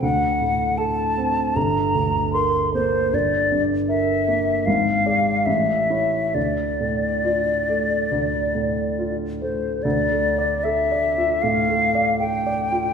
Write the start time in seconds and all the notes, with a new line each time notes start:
0.02 D2 F#5
0.41 A2
0.78 A4 A5
1.18 C4
1.56 G1 A#5
1.95 D2
2.33 A#4 C6
2.74 A#3 C5
3.13 G1 D5
3.52 G2
3.89 A#4 E5
4.28 A#3
4.66 G#1 F5
5.06 G#4 D5
5.46 A1 E5
5.90 E4 C#5
6.34 D2 D5
6.80 A2
7.25 F4
7.69 A3
8.12 D2
8.55 A2
8.99 F4
9.42 A3 C5
9.83 D2 D5
10.12 A3
10.38 D5
10.64 A4 E5
10.92 D5
11.18 F4
11.42 A2 F5
11.69 A3
11.95 D5
12.19 A4 G5
12.46 D5
12.72 F4